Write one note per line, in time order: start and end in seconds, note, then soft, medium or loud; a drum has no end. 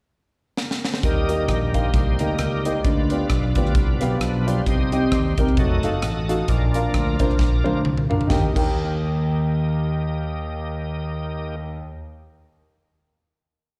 0.57 0.85 A#4 medium
0.57 snare medium
0.71 snare medium
0.85 1.04 C5 medium
0.85 snare medium
0.94 snare medium
1.03 1.48 D#2 loud
1.03 1.70 D#3 medium
1.03 2.81 G3 medium
1.03 2.81 A#3 soft
1.03 1.93 D#4 medium
1.03 1.90 G4 medium
1.03 1.90 A#4 medium
1.03 1.46 D#5 medium
1.03 kick loud
1.03 closed hi-hat medium
1.29 1.43 A#3 medium
1.29 1.43 D#4 medium
1.29 1.43 G4 medium
1.29 1.43 D#5 medium
1.29 closed hi-hat medium
1.48 1.87 A#1 medium
1.48 kick medium
1.48 cross-stick loud
1.48 closed hi-hat medium
1.74 1.88 A#3 medium
1.74 1.88 D#4 medium
1.74 1.88 G4 medium
1.74 1.92 C5 medium
1.74 1.88 F5 medium
1.74 kick medium
1.74 closed hi-hat medium
1.94 2.20 C2 loud
1.94 2.19 D#4 medium
1.94 2.19 G4 medium
1.94 2.21 C5 medium
1.94 kick loud
1.94 closed hi-hat medium
2.19 2.36 D2 medium
2.19 2.34 A#3 medium
2.19 2.34 D#4 medium
2.19 2.80 D#4 medium
2.19 2.80 G4 medium
2.19 2.34 G4 medium
2.19 2.61 A#4 medium
2.19 2.34 D#5 medium
2.19 closed hi-hat medium
2.39 2.77 C#2 medium
2.39 cross-stick loud
2.39 closed hi-hat medium
2.64 2.79 A#3 medium
2.64 2.79 D#4 medium
2.64 2.79 G4 medium
2.64 2.82 C5 medium
2.64 2.79 D#5 medium
2.64 closed hi-hat medium
2.83 3.23 D2 medium
2.83 3.52 D3 medium
2.83 3.29 F4 medium
2.83 3.28 B4 medium
2.83 3.26 D5 medium
2.83 kick loud
2.83 closed hi-hat medium
3.10 3.25 B3 medium
3.10 3.25 F4 medium
3.10 3.25 G4 medium
3.10 3.25 D5 medium
3.10 closed hi-hat medium
3.27 3.52 B1 medium
3.27 4.17 F4 medium
3.27 4.16 B4 medium
3.27 4.16 D5 medium
3.27 kick medium
3.27 cross-stick loud
3.27 closed hi-hat medium
3.55 3.72 D2 medium
3.55 4.62 F3 soft
3.55 4.62 B3 soft
3.55 3.70 B3 medium
3.55 4.62 D4 soft
3.55 3.70 F4 medium
3.55 3.70 G4 medium
3.55 3.70 D5 medium
3.55 kick medium
3.55 closed hi-hat medium
3.66 cross-stick soft
3.75 3.97 C2 medium
3.75 kick loud
3.75 closed hi-hat medium
4.01 4.18 B1 medium
4.01 4.15 B3 medium
4.01 4.15 F4 medium
4.01 4.15 G4 medium
4.01 4.15 F5 medium
4.01 cross-stick soft
4.01 closed hi-hat medium
4.20 4.59 B1 medium
4.20 4.47 B4 medium
4.20 cross-stick loud
4.20 closed hi-hat medium
4.47 4.61 B3 medium
4.47 4.61 F4 medium
4.47 4.61 G4 medium
4.47 4.66 C5 medium
4.47 4.61 D5 medium
4.47 closed hi-hat medium
4.66 5.05 C2 loud
4.66 5.34 C3 medium
4.66 5.34 G3 soft
4.66 5.35 C4 soft
4.66 5.35 D#4 medium
4.66 5.54 G4 medium
4.66 5.39 C5 medium
4.66 5.09 D#5 medium
4.66 kick medium
4.66 closed hi-hat medium
4.92 5.06 C4 medium
4.92 5.06 D#4 medium
4.92 5.06 G4 medium
4.92 5.07 D#5 medium
4.92 closed hi-hat medium
5.12 5.34 D#2 medium
5.12 kick medium
5.12 cross-stick loud
5.12 closed hi-hat medium
5.38 5.54 C2 medium
5.38 5.52 C4 medium
5.38 5.52 D#4 medium
5.38 5.52 G4 medium
5.38 5.52 A#4 medium
5.38 5.57 C5 medium
5.38 kick medium
5.38 closed hi-hat medium
5.47 cross-stick soft
5.57 5.80 F1 loud
5.57 5.90 F#3 medium
5.57 5.90 A3 soft
5.57 5.90 D#4 medium
5.57 6.45 F#4 medium
5.57 6.45 A4 medium
5.57 6.52 D#5 medium
5.57 kick loud
5.57 closed hi-hat medium
5.83 6.00 F#1 medium
5.83 5.98 D#4 medium
5.83 5.97 F#4 medium
5.83 5.98 A4 medium
5.83 5.98 F5 medium
5.83 cross-stick soft
5.83 closed hi-hat medium
6.02 6.41 A1 medium
6.02 cross-stick loud
6.02 closed hi-hat medium
6.29 6.43 D#4 medium
6.29 6.43 F#4 medium
6.29 6.43 A4 medium
6.29 6.43 F5 medium
6.29 closed hi-hat medium
6.48 6.87 A#1 loud
6.48 7.16 A#2 medium
6.48 7.16 F3 soft
6.48 7.17 A#3 soft
6.48 7.17 D4 medium
6.48 7.81 F4 medium
6.48 7.81 A#4 medium
6.48 7.81 D5 medium
6.48 kick loud
6.48 closed hi-hat medium
6.74 6.88 D4 medium
6.74 6.88 F4 medium
6.74 6.89 A#4 medium
6.74 6.89 F5 medium
6.74 closed hi-hat medium
6.94 7.16 D2 medium
6.94 kick medium
6.94 cross-stick loud
6.94 closed hi-hat medium
7.19 7.36 C2 medium
7.19 7.34 D4 medium
7.19 7.34 F4 medium
7.19 7.34 A#4 medium
7.19 7.34 C5 medium
7.19 kick medium
7.19 closed hi-hat medium
7.30 cross-stick soft
7.39 7.61 A#1 medium
7.39 kick loud
7.39 snare soft
7.64 7.82 D2 medium
7.64 7.79 D4 medium
7.64 7.79 F4 medium
7.64 7.79 A#4 medium
7.64 7.79 C5 medium
7.64 high tom medium
7.85 8.23 C2 medium
7.85 mid tom medium
7.98 mid tom medium
8.09 8.24 D4 medium
8.09 8.24 F4 medium
8.09 8.24 A#4 medium
8.09 8.24 F5 medium
8.09 floor tom medium
8.21 floor tom medium
8.27 8.44 D#2 medium
8.27 11.56 D#3 medium
8.27 8.43 D#4 medium
8.27 8.43 G4 medium
8.27 11.56 G4 medium
8.27 8.44 A#4 medium
8.27 11.56 D#5 medium
8.27 kick medium
8.27 snare medium
8.31 11.56 A#3 soft
8.31 8.45 G5 medium
8.53 11.81 D#2 medium
8.53 11.78 D#4 medium
8.53 11.80 G4 medium
8.53 11.82 A#4 medium
8.53 kick medium
8.53 crash medium
8.58 11.83 G5 medium